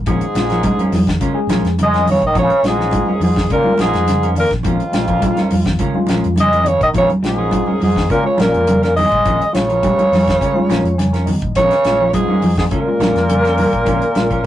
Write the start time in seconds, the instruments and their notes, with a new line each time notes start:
0.06 fingered electric bass A#1, trombone G#2, clean electric guitar F3 G#3 C#4 F4 A#4, alto saxophone G#4, kick, closed hi-hat, low conga
0.21 closed hi-hat
0.35 fingered electric bass A#1, clean electric guitar G3, tine electric piano G#3 C#4 F4, snare, closed hi-hat
0.50 clean electric guitar F3 C#4 F4 A#4, snare, closed hi-hat
0.63 tine electric piano G#3 C#4 D#4, clean electric guitar G#3, kick, closed hi-hat, high conga
0.79 clean electric guitar C#4 F4 A#4, closed hi-hat, high conga
0.92 fingered electric bass F2, clean electric guitar F3, snare, open hi-hat, high conga
1.07 clean electric guitar D#3, kick, snare, closed hi-hat
1.20 clean electric guitar C#3 G#3 C#4 F4 A#4, tine electric piano C#4 F4, kick, closed hi-hat
1.34 tine electric piano G#3 C#4 G#4
1.47 fingered electric bass A#1, clean electric guitar F3 G#3 C#4 F4 A#4, snare, closed hi-hat, high conga
1.63 fingered electric bass F2, snare, closed hi-hat
1.78 clean electric guitar C#3, closed hi-hat, high conga
1.83 trombone G#3, alto saxophone D#5
1.93 clean electric guitar C#4 F4 A#4, snare, closed hi-hat
2.06 trombone C#3, clean electric guitar D#3, open hi-hat, high conga, low conga
2.11 alto saxophone C#5
2.22 fingered electric bass A#1, trombone D#3, kick, closed hi-hat
2.27 alto saxophone D#5
2.34 fingered electric bass A#1, clean electric guitar F3 G#3 C#4 F4 A#4, kick, closed hi-hat, low conga
2.39 trombone C#3, alto saxophone C#5
2.50 closed hi-hat
2.63 fingered electric bass A#1, trombone G#2, clean electric guitar G3, tine electric piano G#3 C#4 F4, alto saxophone G#4, snare, closed hi-hat
2.78 clean electric guitar F3 C#4 F4, muted clean electric guitar stroke, snare
2.91 tine electric piano G#3 C#4 F4, clean electric guitar G#3, kick, closed hi-hat, high conga
3.06 clean electric guitar C#4 F4 A#4, high conga
3.20 fingered electric bass F2, trombone G#2, clean electric guitar F3, alto saxophone G#4, open hi-hat, high conga
3.36 clean electric guitar D#3, kick, snare, low conga
3.50 trombone A#2, clean electric guitar C#3 G#3 C#4 F4 A#4, tine electric piano C#4 D#4, alto saxophone A#4, kick, closed hi-hat
3.63 tine electric piano G#3 C#4 F4, high conga
3.78 fingered electric bass A#1, trombone G#2, clean electric guitar F3 G#3 F4 A#4, alto saxophone G#4, muted clean electric guitar stroke, snare, closed hi-hat, high conga
3.93 fingered electric bass F2, snare, closed hi-hat
4.06 clean electric guitar C#3, snare, closed hi-hat, high conga
4.23 clean electric guitar C#4 F4 A#4, closed hi-hat
4.35 trombone A#2, clean electric guitar D#3, open hi-hat, low conga
4.40 alto saxophone A#4
4.50 fingered electric bass A#1, kick, snare, closed hi-hat
4.63 fingered electric bass A#1, trombone F2, clean electric guitar F3 G#3 C#4 F4 A#4, kick, closed hi-hat, low conga
4.67 alto saxophone F4
4.80 closed hi-hat
4.92 fingered electric bass A#1, clean electric guitar G3, tine electric piano G#3 C#4 F4, snare, closed hi-hat
5.08 clean electric guitar F3 C#4 F4 A#4, kick, closed hi-hat
5.20 tine electric piano G#3 C#4 F4, clean electric guitar G#3, kick, closed hi-hat, high conga
5.36 clean electric guitar C#4 F4 A#4, snare, closed hi-hat, high conga
5.51 fingered electric bass F2, clean electric guitar F3, open hi-hat, high conga
5.65 clean electric guitar D#3, kick, snare, closed hi-hat, low conga
5.79 clean electric guitar C#3 G#3 C#4 F4 A#4, tine electric piano C#4 F4, kick, closed hi-hat
5.94 tine electric piano G#3 C#4 F4, high conga
6.07 fingered electric bass A#1, clean electric guitar F3 G#3 C#4 F4 A#4, snare, closed hi-hat, high conga
6.24 fingered electric bass F2, closed hi-hat
6.36 clean electric guitar C#3, trombone G#3, closed hi-hat, high conga
6.40 alto saxophone D#5
6.52 clean electric guitar C#4 F4 A#4, closed hi-hat
6.64 trombone C#3, clean electric guitar D#3, alto saxophone C#5, closed hi-hat, low conga
6.81 fingered electric bass A#1, trombone D#3, alto saxophone D#5, kick, closed hi-hat
6.94 fingered electric bass A#1, trombone C#3, clean electric guitar F3 G#3 C#4 F4 A#4, kick, closed hi-hat, low conga
6.98 alto saxophone C#5
7.08 closed hi-hat, high conga
7.22 fingered electric bass A#1, trombone G#2, clean electric guitar G3, tine electric piano G#3 C#4 F4, alto saxophone G#4, snare, closed hi-hat
7.37 clean electric guitar F3 C#4 F4 A#4
7.50 tine electric piano G#3 C#4 F4, clean electric guitar G#3, kick, closed hi-hat, high conga
7.66 clean electric guitar C#4 F4 A#4, muted fingered electric bass stroke, high conga
7.80 fingered electric bass F2, trombone G#2, clean electric guitar F3, alto saxophone G#4, open hi-hat, high conga
7.96 clean electric guitar D#3, kick, snare, low conga
8.08 trombone A#2, clean electric guitar C#3 G#3 C#4 F4 A#4, tine electric piano C#4 F4, alto saxophone A#4, kick, closed hi-hat
8.23 trombone C#3, tine electric piano G#3 C#4 F4, alto saxophone C#5
8.37 fingered electric bass A#1, trombone A#2, clean electric guitar F3 G#3 C#4 F4 A#4, alto saxophone A#4, snare, closed hi-hat, high conga
8.54 fingered electric bass F2, closed hi-hat
8.67 clean electric guitar C#3, closed hi-hat, high conga
8.82 trombone A#2, clean electric guitar C#4 F4 A#4, alto saxophone A#4, snare, closed hi-hat
8.96 clean electric guitar D#3, trombone G#3, alto saxophone D#5, open hi-hat, high conga, low conga
9.12 fingered electric bass A#1, kick, closed hi-hat
9.25 fingered electric bass A#1, clean electric guitar F3 G#3 C#4 F4 A#4, kick, closed hi-hat, low conga
9.41 closed hi-hat
9.53 fingered electric bass A#1, trombone C#3, clean electric guitar G3, tine electric piano G#3 C#4 F4, alto saxophone C#5, snare, closed hi-hat
9.69 clean electric guitar F3 F4 A#4, closed hi-hat
9.81 tine electric piano G#3 C#4 G4, kick, closed hi-hat, high conga
9.98 clean electric guitar C#4 F4 A#4, muted fingered electric bass stroke, closed hi-hat, high conga
10.12 fingered electric bass F2, clean electric guitar F3, snare, open hi-hat, high conga
10.28 clean electric guitar D#3, kick, snare, closed hi-hat
10.40 clean electric guitar C#3 G#3 C#4 F4 A#4, tine electric piano C#4 F4, kick, closed hi-hat
10.54 tine electric piano G#3 C#4 F4, high conga
10.69 fingered electric bass A#1, clean electric guitar F3 G#3 C#4 F4 A#4, snare, closed hi-hat, high conga
10.84 fingered electric bass F2, closed hi-hat
10.98 clean electric guitar C#3, tine electric piano G#5, snare, closed hi-hat, high conga
11.13 clean electric guitar C#4 F4 A#4, snare, closed hi-hat
11.26 clean electric guitar D#3, tine electric piano D#5, open hi-hat, high conga, low conga
11.42 fingered electric bass A#1, kick, closed hi-hat
11.55 fingered electric bass A#1, trombone C#3, clean electric guitar F3 G#3 C#4 F4 A#4, alto saxophone C#5, kick, snare, closed hi-hat, low conga
11.71 snare, closed hi-hat
11.84 fingered electric bass A#1, clean electric guitar G3, tine electric piano G#3 C#4 F4, snare, closed hi-hat
12.00 clean electric guitar F3 C#4 F4 A#4
12.13 tine electric piano G#3 C#4 F4, clean electric guitar G#3, alto saxophone G#4, kick, closed hi-hat, high conga
12.17 trombone G#2
12.28 clean electric guitar C#4 F4 A#4, high conga
12.42 fingered electric bass F2, clean electric guitar F3, open hi-hat, high conga
12.57 trombone G#2, clean electric guitar D#3, alto saxophone G#4, kick, snare, low conga
12.70 trombone A#2, clean electric guitar C#3 G#3 C#4 F4 A#4, tine electric piano C#4 F4, alto saxophone A#4, kick, closed hi-hat
12.87 tine electric piano G#3 C#4 F4
12.99 fingered electric bass A#1, clean electric guitar F3 G#3 C#4 F4 A#4, snare, closed hi-hat, high conga
13.14 fingered electric bass F2, snare, closed hi-hat
13.29 clean electric guitar C#3, closed hi-hat, high conga
13.43 clean electric guitar C#4 F4 A#4, snare, closed hi-hat
13.58 clean electric guitar D#3, open hi-hat, high conga, low conga
13.73 fingered electric bass A#1, kick, closed hi-hat
13.85 fingered electric bass A#1, clean electric guitar F3 G#3 C#4 F4 A#4, kick, closed hi-hat, low conga
14.02 closed hi-hat
14.15 fingered electric bass A#1, clean electric guitar G3, tine electric piano G#3 C#4 F4, snare, closed hi-hat
14.30 clean electric guitar F3 C#4 F4 A#4, kick, closed hi-hat